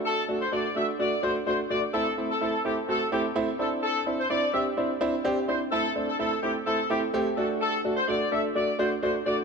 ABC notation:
X:1
M:4/4
L:1/16
Q:1/4=127
K:Dmix
V:1 name="Horn section"
A2 z c d2 e z d2 c z c z d z | A2 z A A2 G z A2 G z3 A z | A2 z c d2 e z6 z c z | A2 z A A2 G z A2 G z3 A z |
A2 z c d2 e z d2 c z c z d z |]
V:2 name="Grand piano"
[A,DF]2 [A,DF] z [A,DF] z [A,DF] z [A,DF] z [A,DF] z [A,DF] z [A,DF] z | [A,CE] z [A,CE] z [A,CE] z [A,CE] z [A,CF] z [A,CE] z [A,CE] z [CDE]2- | [CDE]2 [CDE] z [CDE] z [CDG] z [CDE] z [CDE] z [CDG] z [CDE] z | [A,CE] z [A,CD] z [A,CE] z [A,CE] z [A,CE] z [A,CE] z [A,CG] z [A,DF]2- |
[A,DF]2 [A,DF] z [A,DF] z [A,DA] z [A,DF] z [A,DF] z [A,DF] z [A,DF] z |]